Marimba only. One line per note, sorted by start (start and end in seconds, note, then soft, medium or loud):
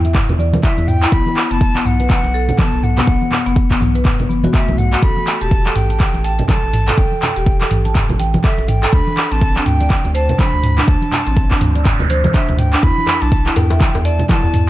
0.05 0.14 E5 medium
0.39 0.53 D5 loud
0.63 0.77 E4 medium
1.02 1.11 E4 loud
1.12 1.20 B3 medium
1.51 1.60 B3 loud
1.76 1.85 B3 medium
2.00 2.09 B4 medium
2.34 2.48 A4 loud
2.59 2.72 B3 medium
2.97 3.06 B3 loud
3.07 3.15 B3 medium
3.46 3.55 B3 loud
3.71 3.80 B3 medium
3.95 4.04 B4 medium
4.29 4.42 B3 medium
4.44 4.53 F#4 medium
4.54 4.67 A3 medium
4.92 5.02 F#4 medium
5.03 5.10 A4 medium
5.41 5.47 G4 medium
5.66 5.75 A4 medium
5.90 5.99 A5 medium
6.25 6.38 G5 loud
6.49 6.63 A4 medium
6.88 6.96 A4 loud
7.36 7.42 G4 medium
7.61 7.70 A4 medium
7.85 7.94 A5 medium
8.20 8.33 G5 loud
8.44 8.58 A4 medium
8.83 8.92 A4 loud
8.93 9.01 D4 medium
9.32 9.37 C4 medium
9.56 9.65 D4 medium
9.80 9.89 D5 medium
10.15 10.28 C5 loud
10.39 10.53 D4 medium
10.78 10.87 D4 loud
11.27 11.32 C4 medium
11.51 11.61 D4 medium
11.75 11.84 D5 medium
12.10 12.24 C5 loud
12.34 12.48 D4 medium
12.73 12.82 D4 loud
13.22 13.27 D4 medium
13.46 13.56 E4 medium
13.71 13.80 E5 medium
14.05 14.19 D5 loud
14.30 14.43 E4 medium